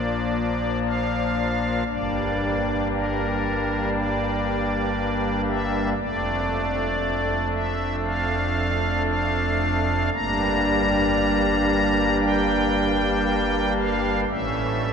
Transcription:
0, 0, Header, 1, 2, 480
1, 0, Start_track
1, 0, Tempo, 1039861
1, 864, Time_signature, 4, 2, 24, 8
1, 1340, Tempo, 1025641
1, 4220, Tempo, 1077199
1, 4700, Tempo, 1039861
1, 6913, End_track
2, 0, Start_track
2, 0, Title_t, "Pipe organ"
2, 0, Program_c, 0, 19
2, 0, Note_on_c, 0, 34, 71
2, 0, Note_on_c, 0, 46, 63
2, 0, Note_on_c, 0, 53, 51
2, 0, Note_on_c, 0, 58, 53
2, 0, Note_on_c, 0, 62, 49
2, 0, Note_on_c, 0, 74, 108
2, 366, Note_off_c, 0, 74, 0
2, 382, Note_on_c, 0, 77, 113
2, 844, Note_off_c, 0, 34, 0
2, 844, Note_off_c, 0, 62, 0
2, 845, Note_off_c, 0, 46, 0
2, 845, Note_off_c, 0, 53, 0
2, 845, Note_off_c, 0, 58, 0
2, 849, Note_off_c, 0, 77, 0
2, 869, Note_on_c, 0, 31, 72
2, 869, Note_on_c, 0, 58, 60
2, 869, Note_on_c, 0, 62, 58
2, 869, Note_on_c, 0, 74, 107
2, 871, Note_on_c, 0, 43, 69
2, 871, Note_on_c, 0, 55, 58
2, 1329, Note_off_c, 0, 74, 0
2, 1343, Note_on_c, 0, 70, 98
2, 1808, Note_off_c, 0, 70, 0
2, 1820, Note_on_c, 0, 74, 109
2, 2517, Note_off_c, 0, 74, 0
2, 2542, Note_on_c, 0, 76, 109
2, 2741, Note_off_c, 0, 76, 0
2, 2758, Note_off_c, 0, 31, 0
2, 2758, Note_off_c, 0, 58, 0
2, 2758, Note_off_c, 0, 62, 0
2, 2759, Note_off_c, 0, 43, 0
2, 2759, Note_off_c, 0, 55, 0
2, 2775, Note_on_c, 0, 74, 125
2, 2777, Note_on_c, 0, 29, 75
2, 2777, Note_on_c, 0, 41, 75
2, 2777, Note_on_c, 0, 62, 60
2, 2779, Note_on_c, 0, 57, 62
2, 3482, Note_off_c, 0, 74, 0
2, 3499, Note_on_c, 0, 76, 104
2, 3705, Note_off_c, 0, 76, 0
2, 3742, Note_on_c, 0, 77, 124
2, 4206, Note_off_c, 0, 77, 0
2, 4219, Note_on_c, 0, 77, 127
2, 4683, Note_off_c, 0, 29, 0
2, 4683, Note_off_c, 0, 41, 0
2, 4683, Note_off_c, 0, 62, 0
2, 4684, Note_off_c, 0, 57, 0
2, 4685, Note_off_c, 0, 77, 0
2, 4698, Note_on_c, 0, 55, 70
2, 4699, Note_on_c, 0, 31, 81
2, 4699, Note_on_c, 0, 43, 76
2, 4700, Note_on_c, 0, 58, 70
2, 4700, Note_on_c, 0, 62, 69
2, 4700, Note_on_c, 0, 82, 127
2, 5640, Note_off_c, 0, 82, 0
2, 5658, Note_on_c, 0, 79, 124
2, 6360, Note_off_c, 0, 79, 0
2, 6373, Note_on_c, 0, 77, 116
2, 6580, Note_off_c, 0, 77, 0
2, 6600, Note_off_c, 0, 31, 0
2, 6600, Note_off_c, 0, 43, 0
2, 6600, Note_off_c, 0, 55, 0
2, 6600, Note_off_c, 0, 62, 0
2, 6601, Note_off_c, 0, 58, 0
2, 6616, Note_on_c, 0, 45, 75
2, 6616, Note_on_c, 0, 57, 66
2, 6616, Note_on_c, 0, 61, 71
2, 6617, Note_on_c, 0, 33, 80
2, 6617, Note_on_c, 0, 76, 121
2, 6619, Note_on_c, 0, 52, 65
2, 6913, Note_off_c, 0, 33, 0
2, 6913, Note_off_c, 0, 45, 0
2, 6913, Note_off_c, 0, 52, 0
2, 6913, Note_off_c, 0, 57, 0
2, 6913, Note_off_c, 0, 61, 0
2, 6913, Note_off_c, 0, 76, 0
2, 6913, End_track
0, 0, End_of_file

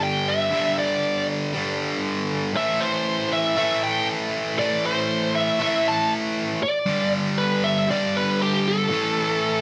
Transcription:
0, 0, Header, 1, 3, 480
1, 0, Start_track
1, 0, Key_signature, 0, "minor"
1, 0, Tempo, 507614
1, 746, Time_signature, 4, 2, 24, 8
1, 9088, End_track
2, 0, Start_track
2, 0, Title_t, "Lead electric guitar"
2, 0, Program_c, 0, 29
2, 31, Note_on_c, 0, 79, 97
2, 268, Note_on_c, 0, 76, 97
2, 276, Note_off_c, 0, 79, 0
2, 714, Note_off_c, 0, 76, 0
2, 747, Note_on_c, 0, 74, 83
2, 1193, Note_off_c, 0, 74, 0
2, 2427, Note_on_c, 0, 76, 81
2, 2652, Note_on_c, 0, 72, 80
2, 2673, Note_off_c, 0, 76, 0
2, 3144, Note_on_c, 0, 76, 104
2, 3153, Note_off_c, 0, 72, 0
2, 3370, Note_off_c, 0, 76, 0
2, 3381, Note_on_c, 0, 76, 106
2, 3622, Note_on_c, 0, 79, 105
2, 3630, Note_off_c, 0, 76, 0
2, 3846, Note_off_c, 0, 79, 0
2, 4341, Note_on_c, 0, 74, 75
2, 4566, Note_off_c, 0, 74, 0
2, 4594, Note_on_c, 0, 72, 79
2, 5035, Note_off_c, 0, 72, 0
2, 5064, Note_on_c, 0, 76, 98
2, 5304, Note_off_c, 0, 76, 0
2, 5316, Note_on_c, 0, 76, 91
2, 5556, Note_off_c, 0, 76, 0
2, 5559, Note_on_c, 0, 81, 105
2, 5774, Note_off_c, 0, 81, 0
2, 6270, Note_on_c, 0, 74, 100
2, 6713, Note_off_c, 0, 74, 0
2, 6981, Note_on_c, 0, 71, 105
2, 7223, Note_on_c, 0, 76, 107
2, 7229, Note_off_c, 0, 71, 0
2, 7446, Note_off_c, 0, 76, 0
2, 7476, Note_on_c, 0, 74, 109
2, 7716, Note_off_c, 0, 74, 0
2, 7723, Note_on_c, 0, 71, 101
2, 7936, Note_off_c, 0, 71, 0
2, 7961, Note_on_c, 0, 67, 92
2, 8199, Note_off_c, 0, 67, 0
2, 8205, Note_on_c, 0, 69, 77
2, 9088, Note_off_c, 0, 69, 0
2, 9088, End_track
3, 0, Start_track
3, 0, Title_t, "Distorted electric guitar"
3, 0, Program_c, 1, 30
3, 0, Note_on_c, 1, 43, 76
3, 0, Note_on_c, 1, 50, 72
3, 0, Note_on_c, 1, 55, 86
3, 475, Note_off_c, 1, 43, 0
3, 479, Note_off_c, 1, 55, 0
3, 486, Note_on_c, 1, 43, 88
3, 489, Note_off_c, 1, 50, 0
3, 505, Note_on_c, 1, 50, 98
3, 521, Note_on_c, 1, 55, 100
3, 1439, Note_off_c, 1, 55, 0
3, 1442, Note_off_c, 1, 43, 0
3, 1450, Note_on_c, 1, 55, 81
3, 1451, Note_off_c, 1, 50, 0
3, 1470, Note_on_c, 1, 50, 80
3, 1487, Note_on_c, 1, 43, 57
3, 2402, Note_off_c, 1, 50, 0
3, 2404, Note_off_c, 1, 55, 0
3, 2406, Note_on_c, 1, 45, 88
3, 2422, Note_off_c, 1, 43, 0
3, 2427, Note_on_c, 1, 52, 103
3, 2442, Note_on_c, 1, 57, 99
3, 3362, Note_off_c, 1, 57, 0
3, 3366, Note_on_c, 1, 57, 85
3, 3382, Note_off_c, 1, 52, 0
3, 3386, Note_on_c, 1, 52, 74
3, 3399, Note_off_c, 1, 45, 0
3, 3403, Note_on_c, 1, 45, 64
3, 4317, Note_off_c, 1, 45, 0
3, 4320, Note_off_c, 1, 57, 0
3, 4328, Note_on_c, 1, 45, 94
3, 4330, Note_off_c, 1, 52, 0
3, 4347, Note_on_c, 1, 52, 97
3, 4363, Note_on_c, 1, 57, 105
3, 5277, Note_off_c, 1, 57, 0
3, 5281, Note_off_c, 1, 45, 0
3, 5289, Note_on_c, 1, 57, 76
3, 5290, Note_off_c, 1, 52, 0
3, 5310, Note_on_c, 1, 52, 74
3, 5324, Note_on_c, 1, 45, 69
3, 6241, Note_off_c, 1, 57, 0
3, 6251, Note_off_c, 1, 52, 0
3, 6258, Note_off_c, 1, 45, 0
3, 6486, Note_on_c, 1, 43, 81
3, 6507, Note_on_c, 1, 50, 99
3, 6521, Note_on_c, 1, 55, 101
3, 7436, Note_off_c, 1, 43, 0
3, 7447, Note_on_c, 1, 43, 82
3, 7450, Note_off_c, 1, 50, 0
3, 7457, Note_off_c, 1, 55, 0
3, 7469, Note_on_c, 1, 50, 89
3, 7485, Note_on_c, 1, 55, 88
3, 8401, Note_off_c, 1, 43, 0
3, 8406, Note_off_c, 1, 50, 0
3, 8410, Note_on_c, 1, 45, 83
3, 8419, Note_off_c, 1, 55, 0
3, 8427, Note_on_c, 1, 52, 96
3, 8447, Note_on_c, 1, 57, 91
3, 9088, Note_off_c, 1, 45, 0
3, 9088, Note_off_c, 1, 52, 0
3, 9088, Note_off_c, 1, 57, 0
3, 9088, End_track
0, 0, End_of_file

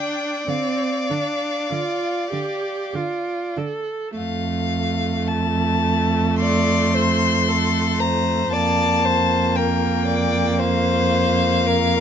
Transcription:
0, 0, Header, 1, 5, 480
1, 0, Start_track
1, 0, Key_signature, -1, "minor"
1, 0, Tempo, 1237113
1, 1618, Time_signature, 4, 2, 24, 8
1, 1618, Key_signature, -1, "major"
1, 1618, Tempo, 1129944
1, 2098, Tempo, 1094891
1, 3058, Tempo, 1038062
1, 4498, Tempo, 1075269
1, 5122, End_track
2, 0, Start_track
2, 0, Title_t, "Violin"
2, 0, Program_c, 0, 40
2, 0, Note_on_c, 0, 79, 60
2, 192, Note_on_c, 0, 77, 42
2, 198, Note_off_c, 0, 79, 0
2, 1144, Note_off_c, 0, 77, 0
2, 1617, Note_on_c, 0, 77, 62
2, 2088, Note_on_c, 0, 81, 61
2, 2094, Note_off_c, 0, 77, 0
2, 2576, Note_off_c, 0, 81, 0
2, 2579, Note_on_c, 0, 84, 73
2, 3295, Note_on_c, 0, 82, 60
2, 3302, Note_off_c, 0, 84, 0
2, 3535, Note_off_c, 0, 82, 0
2, 3537, Note_on_c, 0, 81, 72
2, 4013, Note_on_c, 0, 79, 64
2, 4020, Note_off_c, 0, 81, 0
2, 4494, Note_on_c, 0, 77, 73
2, 4501, Note_off_c, 0, 79, 0
2, 5122, Note_off_c, 0, 77, 0
2, 5122, End_track
3, 0, Start_track
3, 0, Title_t, "Violin"
3, 0, Program_c, 1, 40
3, 0, Note_on_c, 1, 74, 46
3, 1385, Note_off_c, 1, 74, 0
3, 2584, Note_on_c, 1, 74, 56
3, 2818, Note_on_c, 1, 72, 44
3, 2825, Note_off_c, 1, 74, 0
3, 3056, Note_on_c, 1, 69, 48
3, 3063, Note_off_c, 1, 72, 0
3, 3292, Note_on_c, 1, 72, 51
3, 3299, Note_off_c, 1, 69, 0
3, 3539, Note_on_c, 1, 74, 57
3, 3545, Note_off_c, 1, 72, 0
3, 3780, Note_on_c, 1, 72, 53
3, 3787, Note_off_c, 1, 74, 0
3, 4017, Note_on_c, 1, 70, 50
3, 4024, Note_off_c, 1, 72, 0
3, 4252, Note_off_c, 1, 70, 0
3, 4255, Note_on_c, 1, 74, 54
3, 4492, Note_on_c, 1, 72, 62
3, 4499, Note_off_c, 1, 74, 0
3, 4971, Note_on_c, 1, 70, 63
3, 4977, Note_off_c, 1, 72, 0
3, 5122, Note_off_c, 1, 70, 0
3, 5122, End_track
4, 0, Start_track
4, 0, Title_t, "Viola"
4, 0, Program_c, 2, 41
4, 0, Note_on_c, 2, 62, 32
4, 178, Note_off_c, 2, 62, 0
4, 184, Note_on_c, 2, 60, 40
4, 428, Note_on_c, 2, 62, 31
4, 434, Note_off_c, 2, 60, 0
4, 664, Note_off_c, 2, 62, 0
4, 667, Note_on_c, 2, 65, 41
4, 897, Note_off_c, 2, 65, 0
4, 901, Note_on_c, 2, 67, 37
4, 1145, Note_on_c, 2, 65, 36
4, 1151, Note_off_c, 2, 67, 0
4, 1388, Note_on_c, 2, 69, 32
4, 1394, Note_off_c, 2, 65, 0
4, 1617, Note_off_c, 2, 69, 0
4, 1620, Note_on_c, 2, 57, 45
4, 3526, Note_off_c, 2, 57, 0
4, 3544, Note_on_c, 2, 58, 47
4, 5122, Note_off_c, 2, 58, 0
4, 5122, End_track
5, 0, Start_track
5, 0, Title_t, "Cello"
5, 0, Program_c, 3, 42
5, 184, Note_on_c, 3, 50, 33
5, 215, Note_off_c, 3, 50, 0
5, 428, Note_on_c, 3, 50, 34
5, 459, Note_off_c, 3, 50, 0
5, 663, Note_on_c, 3, 50, 31
5, 694, Note_off_c, 3, 50, 0
5, 902, Note_on_c, 3, 50, 30
5, 933, Note_off_c, 3, 50, 0
5, 1139, Note_on_c, 3, 50, 31
5, 1170, Note_off_c, 3, 50, 0
5, 1385, Note_on_c, 3, 50, 30
5, 1416, Note_off_c, 3, 50, 0
5, 1619, Note_on_c, 3, 41, 45
5, 3525, Note_off_c, 3, 41, 0
5, 3536, Note_on_c, 3, 41, 48
5, 5122, Note_off_c, 3, 41, 0
5, 5122, End_track
0, 0, End_of_file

